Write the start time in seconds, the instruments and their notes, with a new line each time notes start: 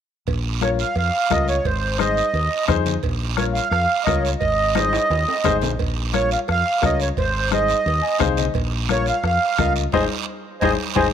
0.27 fingered electric bass A#1, bombo low, cowbell, high conga, long guiro
0.61 upright piano F4 A#4 C#5, accordion C#5, bombo rim, cowbell, high conga, short guiro
0.79 accordion F5, short guiro
0.95 fingered electric bass F2, accordion F5, cowbell, high conga, long guiro
1.30 fingered electric bass C#2, upright piano F4 A#4 D#5, accordion D#5, bombo low, bombo rim, cowbell, high conga, low timbale, short guiro
1.48 accordion C#5, short guiro
1.65 fingered electric bass G#1, accordion C5, bombo low, cowbell, high conga, long guiro
1.98 upright piano D#4 G#4 C5, accordion D#5, bombo rim, cowbell, high conga, short guiro
2.17 short guiro
2.33 fingered electric bass D#2, cowbell, high conga, long guiro
2.68 fingered electric bass F2, upright piano D#4 G#4 C5, bombo low, bombo rim, cowbell, high conga, low conga, short guiro
2.86 low conga, short guiro
3.03 fingered electric bass A#1, bombo low, cowbell, high conga, long guiro
3.37 upright piano F4 A#4 C#5, accordion C#5, bombo rim, cowbell, high conga, short guiro
3.53 accordion F5, short guiro
3.70 fingered electric bass F2, accordion F5, bombo rim, cowbell, high conga, long guiro
4.04 fingered electric bass C#2, upright piano F4 A#4 C#5, accordion D#5, bombo low, bombo rim, cowbell, high conga, short guiro
4.22 accordion C#5, short guiro
4.39 fingered electric bass G#1, accordion D#5, bombo low, cowbell, high conga, long guiro
4.75 upright piano D#4 G#4 C5, bombo rim, cowbell, high conga, high timbale, short guiro
4.93 high timbale, short guiro
5.10 fingered electric bass D#2, cowbell, high conga, high timbale, long guiro
5.28 low timbale
5.44 fingered electric bass G#1, upright piano D#4 G#4 C5, bombo low, bombo rim, cowbell, high conga, low conga, low timbale, short guiro
5.62 fingered electric bass A#1, low conga, low timbale, short guiro
5.79 fingered electric bass A#1, bombo low, cowbell, high conga, long guiro
6.13 upright piano F4 A#4 C#5, accordion C#5, bombo rim, cowbell, high conga, short guiro
6.31 accordion F5, short guiro
6.48 fingered electric bass F2, accordion F5, bombo rim, cowbell, high conga, long guiro
6.82 fingered electric bass C#2, upright piano F4 A#4 C#5, accordion D#5, bombo low, bombo rim, cowbell, high conga, short guiro
7.00 accordion C#5, short guiro
7.17 fingered electric bass G#1, accordion C5, bombo low, cowbell, high conga, long guiro
7.51 upright piano D#4 G#4 C5, accordion D#5, bombo rim, cowbell, high conga, short guiro
7.68 short guiro
7.86 fingered electric bass D#2, cowbell, high conga, long guiro
8.02 upright piano G#5
8.19 fingered electric bass C2, upright piano D#4 G#4 C5 F5, bombo low, bombo rim, cowbell, high conga, low conga, short guiro
8.37 upright piano D#5, low conga, short guiro
8.54 fingered electric bass A#1, bombo low, cowbell, high conga, long guiro
8.89 upright piano F4 A#4 C#5, accordion C#5, bombo rim, cowbell, high conga, short guiro
9.06 accordion F5, short guiro
9.23 fingered electric bass F2, accordion F5, bombo rim, cowbell, high conga, long guiro
9.58 fingered electric bass C#2, upright piano F4 A#4 D#5, bombo low, bombo rim, cowbell, high conga, low timbale, short guiro
9.76 short guiro
9.92 fingered electric bass G#1, upright piano D#4 G#4 C5, accordion C5 D#5 G#5, bombo low, high conga, high timbale, long guiro
10.61 fingered electric bass G#1, upright piano D#4 G#4 C5, accordion C5 D#5 G#5, bombo low, high conga, high timbale, long guiro
10.96 fingered electric bass G#1, upright piano D#4 G#4 C5, accordion C5 D#5 G#5, bombo low, high conga, high timbale, long guiro